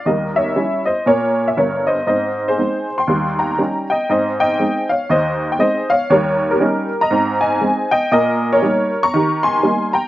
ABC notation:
X:1
M:4/4
L:1/16
Q:"Swing" 1/4=119
K:Ab
V:1 name="Honky-tonk piano"
[Be]2 [d_f]4 [ce]2 [Bd]3 f [Bd]2 [ce]2 | [ce]3 [Ac]4 [gc']3 [gb]4 [eg]2 | [ce]2 [eg]4 [df]2 [ce]3 g [ce]2 [df]2 | [Bd]3 [GB]4 [eb]3 [ea]4 [eg]2 |
[Be]3 [Bd]4 [bd']3 [ac']4 [gb]2 |]
V:2 name="Honky-tonk piano" clef=bass
[E,,G,]4 [G,D_F]4 B,,4 [G,,,G,,]4 | [A,,C]4 [A,CE]4 [E,,G,]4 [G,DE]4 | [A,,C]4 [A,CE]4 E,,4 [A,CE]4 | [E,,G,]4 [G,DE]4 [A,,C]4 [A,CE]4 |
B,,4 [G,B,E]4 [E,G]4 [G,B,E]4 |]